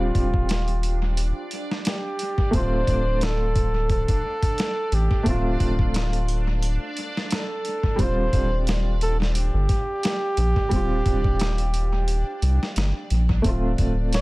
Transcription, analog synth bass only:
0.00 0.11 D#1 medium
0.15 1.33 D#1 medium
2.54 2.84 D1 medium
2.87 4.05 D1 medium
4.09 4.22 F1 medium
4.92 5.09 A1 medium
5.26 5.57 D1 medium
5.60 6.78 D1 medium
7.99 8.29 D#1 medium
8.33 9.51 D#1 medium
9.54 9.68 G1 medium
10.38 10.54 A#1 medium
10.72 11.02 D#1 medium
11.06 12.23 D#1 medium
12.42 12.59 C2 medium
12.77 12.93 G1 medium
13.11 13.41 A#1 medium
13.45 13.75 D1 loud
13.79 14.21 D1 medium

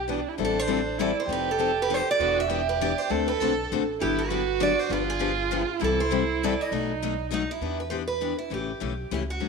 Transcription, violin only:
0.10 0.30 D4 medium
0.29 0.39 E4 medium
0.39 1.00 D4 medium
0.99 1.27 E4 medium
1.28 2.15 G4 loud
2.19 2.47 F#4 medium
2.50 3.12 G4 medium
3.11 3.88 A4 loud
4.01 4.29 E4 medium
4.29 4.93 F#4 loud
4.92 5.82 F4 loud
5.81 6.74 E4 medium
6.73 7.50 D#4 medium

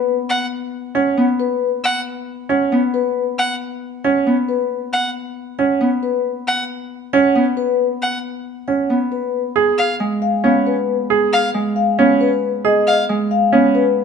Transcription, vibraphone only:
0.00 0.14 B4 medium
0.95 1.24 F#5 medium
1.40 1.68 B4 medium
2.50 2.79 F#5 medium
2.94 3.23 B4 medium
4.04 4.33 F#5 medium
4.48 4.77 B4 medium
5.59 5.87 F#5 medium
6.03 6.31 B4 medium
7.13 7.42 F#5 medium
7.57 7.86 B4 medium
8.68 8.96 F#5 soft
9.12 9.40 B4 soft
10.22 10.51 F5 medium
10.66 10.95 B4 medium
11.76 12.05 F5 medium
12.21 12.49 B4 medium
12.65 12.93 D#5 medium
13.31 13.60 F5 medium
13.75 14.04 B4 medium

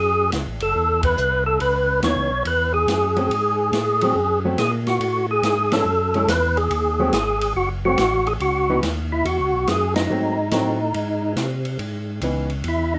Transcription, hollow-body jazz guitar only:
2.04 2.29 E3 medium
2.04 2.29 B3 medium
2.04 2.30 D#4 medium
3.17 3.29 F#3 medium
3.17 3.30 A3 medium
3.17 3.30 C4 medium
4.03 4.15 F#3 medium
4.03 4.15 A3 medium
4.03 4.15 C4 medium
4.45 4.57 F#3 medium
4.45 4.58 A3 medium
4.45 4.58 C4 medium
5.73 5.85 G#3 medium
5.73 5.85 C#4 medium
5.73 5.86 E4 medium
6.15 6.27 G#3 medium
6.15 6.28 C#4 medium
6.15 6.28 E4 medium
7.00 7.12 F#3 medium
7.00 7.12 A3 medium
7.00 7.13 C4 medium
7.85 7.97 F#3 medium
7.85 7.98 A3 medium
7.85 7.98 C4 medium
8.70 8.82 E3 medium
8.70 8.82 B3 medium
8.70 8.83 D#4 medium
10.10 10.36 F#3 medium
10.10 10.36 A3 medium
10.10 10.36 C4 medium
10.52 10.78 F#3 medium
10.52 10.78 A3 medium
10.52 10.78 C4 medium
12.23 12.48 E3 medium
12.23 12.49 B3 medium
12.23 12.49 D#4 medium

